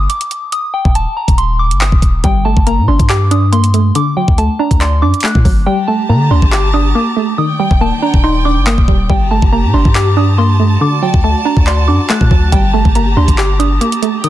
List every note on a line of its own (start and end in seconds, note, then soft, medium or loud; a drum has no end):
0.10 0.50 D6 medium
0.10 closed hi-hat medium
0.21 closed hi-hat medium
0.31 closed hi-hat medium
0.52 0.71 D#6 medium
0.52 closed hi-hat medium
0.74 0.92 G5 medium
0.85 1.06 D#1 loud
0.85 kick loud
0.95 1.13 A5 medium
0.95 closed hi-hat medium
1.17 1.35 A#5 medium
1.28 1.72 D#1 loud
1.28 kick medium
1.28 closed hi-hat medium
1.38 1.56 C6 medium
1.38 closed hi-hat medium
1.59 1.78 D6 medium
1.71 1.91 G1 loud
1.71 closed hi-hat medium
1.81 1.99 D#6 medium
1.81 clap loud
1.92 2.02 D#1 loud
1.92 kick medium
2.02 2.23 D#1 loud
2.02 kick loud
2.02 closed hi-hat medium
2.24 2.55 G1 loud
2.24 3.31 G3 medium
2.24 2.42 G5 medium
2.24 kick loud
2.24 closed hi-hat medium
2.45 3.52 A3 medium
2.45 2.63 A5 medium
2.57 2.80 F#1 loud
2.57 kick loud
2.67 3.51 A#3 medium
2.67 2.85 A#5 medium
2.67 closed hi-hat medium
2.78 2.88 A#2 loud
2.88 2.99 G1 loud
2.88 3.30 D4 medium
2.88 3.06 C6 medium
2.99 3.91 G2 loud
2.99 kick loud
2.99 closed hi-hat medium
3.09 3.95 G4 loud
3.09 3.28 D6 medium
3.09 clap loud
3.31 3.95 D4 medium
3.31 3.49 D#6 medium
3.31 closed hi-hat medium
3.52 3.95 A#3 medium
3.52 3.93 C6 medium
3.52 closed hi-hat medium
3.64 closed hi-hat medium
3.74 3.95 A3 medium
3.74 closed hi-hat medium
3.95 5.02 D3 medium
3.95 4.14 D6 medium
3.95 closed hi-hat medium
4.17 5.24 F#3 medium
4.17 4.35 G5 medium
4.28 4.49 D2 loud
4.28 kick loud
4.38 5.23 A3 medium
4.38 4.56 A5 medium
4.38 closed hi-hat medium
4.59 5.01 D4 medium
4.59 4.78 A#5 medium
4.71 5.04 D2 loud
4.71 kick loud
4.71 closed hi-hat medium
4.81 5.67 D5 loud
4.81 4.99 C6 medium
4.81 clap medium
4.81 closed hi-hat medium
5.02 5.13 F#2 loud
5.02 5.67 D4 medium
5.02 5.20 D6 medium
5.14 closed hi-hat soft
5.20 5.67 A3 medium
5.20 5.42 F#6 medium
5.20 clap loud
5.20 closed hi-hat medium
5.28 closed hi-hat medium
5.35 5.45 A2 loud
5.35 kick medium
5.45 5.67 G1 loud
5.45 5.67 F#3 medium
5.45 kick loud
5.45 open hi-hat medium
5.66 6.74 G3 loud
5.66 7.36 G4 medium
5.66 5.85 G5 medium
5.66 7.36 A5 medium
5.66 7.36 A#5 medium
5.88 6.95 A3 medium
5.88 6.06 A5 medium
6.09 6.30 D3 loud
6.09 6.94 A#3 medium
6.09 6.28 A#5 medium
6.31 6.42 D2 loud
6.31 6.72 D4 medium
6.31 6.49 C6 medium
6.42 6.93 G1 loud
6.42 kick loud
6.52 7.38 G4 loud
6.52 6.70 D6 medium
6.52 clap loud
6.74 7.38 D4 medium
6.74 6.92 D#6 medium
6.95 7.38 A#3 medium
6.95 7.36 D6 medium
7.17 7.38 A3 medium
7.38 8.45 D#3 medium
7.38 9.08 D#3 medium
7.38 9.08 D5 medium
7.38 9.08 G5 medium
7.38 7.56 D#6 medium
7.59 8.67 G3 medium
7.59 7.78 G5 medium
7.71 7.91 D#1 loud
7.71 kick loud
7.81 8.66 A#3 medium
7.81 7.99 A5 medium
8.02 8.44 D4 medium
8.02 8.21 A#5 medium
8.14 8.58 D#1 loud
8.14 kick loud
8.24 9.09 D#4 loud
8.24 8.42 C6 medium
8.45 9.10 D4 medium
8.45 8.63 D6 medium
8.57 8.77 G1 loud
8.67 9.10 A#3 medium
8.67 8.85 D#6 medium
8.67 clap loud
8.78 8.87 D#1 loud
8.78 kick medium
8.88 9.09 D#1 loud
8.88 9.08 G3 medium
8.88 kick loud
9.10 9.41 G1 loud
9.10 10.17 G3 medium
9.10 10.79 G4 medium
9.10 9.28 G5 medium
9.10 14.20 A5 medium
9.10 10.79 A#5 medium
9.10 kick loud
9.31 10.38 A3 medium
9.31 9.49 A5 medium
9.42 9.65 F#1 loud
9.42 kick loud
9.52 10.37 A#3 medium
9.52 9.71 A#5 medium
9.64 9.73 A#2 loud
9.74 9.85 G1 loud
9.74 10.15 D4 medium
9.74 9.92 C6 medium
9.85 10.77 G2 loud
9.85 kick loud
9.95 10.81 G4 loud
9.95 10.13 D6 loud
9.95 clap loud
10.17 10.81 D4 medium
10.17 10.35 D#6 medium
10.38 10.81 A#3 medium
10.38 10.78 C6 medium
10.60 10.81 A3 medium
10.81 11.88 D3 loud
10.81 12.51 F#4 medium
10.81 12.51 D5 medium
10.81 10.99 D6 medium
11.02 12.10 F#3 medium
11.02 11.21 G5 medium
11.14 11.34 D2 loud
11.14 kick loud
11.24 12.08 A3 medium
11.24 11.42 A5 medium
11.45 11.87 D4 medium
11.45 11.64 A#5 medium
11.57 11.90 D2 loud
11.57 kick medium
11.67 12.52 D5 loud
11.67 11.85 C6 medium
11.67 clap medium
11.88 11.99 F#2 loud
11.88 12.52 D4 medium
11.88 12.06 D6 medium
12.10 12.52 A3 medium
12.10 12.28 F#6 medium
12.10 clap loud
12.21 12.30 A2 loud
12.21 kick medium
12.31 12.52 D2 loud
12.31 12.52 F#3 medium
12.31 kick loud
12.52 12.84 G1 loud
12.52 13.60 G3 loud
12.52 14.22 G4 medium
12.52 12.70 G5 medium
12.52 14.22 A#5 medium
12.52 kick loud
12.52 closed hi-hat medium
12.73 13.81 A3 medium
12.73 12.92 A5 medium
12.85 13.15 G1 loud
12.85 kick loud
12.95 13.80 A#3 medium
12.95 13.14 A#5 medium
12.95 closed hi-hat medium
13.17 13.28 D2 loud
13.17 13.58 D4 medium
13.17 13.35 C6 medium
13.28 13.79 G1 loud
13.28 kick medium
13.28 closed hi-hat medium
13.38 14.24 G4 loud
13.38 13.56 D6 medium
13.38 clap loud
13.59 14.24 D4 medium
13.59 13.78 D#6 medium
13.59 closed hi-hat medium
13.81 14.24 A#3 medium
13.81 14.21 D6 medium
13.81 closed hi-hat medium
13.92 closed hi-hat medium
14.02 14.24 A3 medium
14.02 closed hi-hat medium
14.24 14.29 D#3 medium
14.24 14.29 D5 medium
14.24 14.29 G5 medium
14.24 14.29 D#6 medium
14.24 closed hi-hat medium